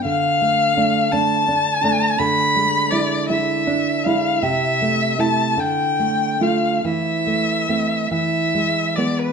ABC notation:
X:1
M:6/8
L:1/16
Q:3/8=52
K:Am
V:1 name="Violin"
f6 a6 | b4 d2 e4 f2 | e4 a2 g4 f2 | e6 e4 d B |]
V:2 name="Nylon-string guitar"
D,2 A,2 [A,D]2 [A,D]2 D2 [A,D]2 | D,2 ^G,2 [G,E]2 [G,E]2 D2 [G,E]2 | C,2 A,2 [A,E]2 D,2 A,2 [A,F]2 | E,2 A,2 [A,C]2 E,2 ^G,2 [G,B,]2 |]